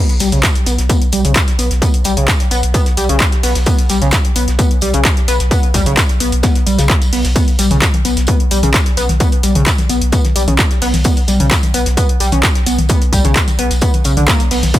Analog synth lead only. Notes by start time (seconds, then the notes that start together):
0.20 G3
0.32 C#3
0.66 B3
0.89 B3
1.13 G3
1.25 C#3
1.59 B3
1.82 B3
2.05 G3
2.17 C#3
2.51 B3
2.74 B3
2.97 G3
3.09 C#3
3.43 B3
3.66 B3
3.90 G3
4.02 C#3
4.36 B3
4.59 B3
4.82 G3
4.94 C#3
5.28 B3
5.51 B3
5.74 G3
5.86 C#3
6.20 B3
6.43 B3
6.66 G3
6.79 C#3
7.13 B3
7.36 B3
7.59 G3
7.71 C#3
8.05 B3
8.28 B3
8.51 G3
8.63 C#3
8.97 B3
9.20 B3
9.43 G3
9.55 C#3
9.89 B3
10.12 B3
10.36 G3
10.48 C#3
10.82 B3
11.05 B3
11.28 G3
11.40 C#3
11.74 B3
11.97 B3
12.20 G3
12.32 C#3
12.66 B3
12.89 B3
13.13 G3
13.25 C#3
13.59 B3
13.82 B3
14.05 C#3
14.17 D3
14.28 A#3
14.51 B3
14.74 B3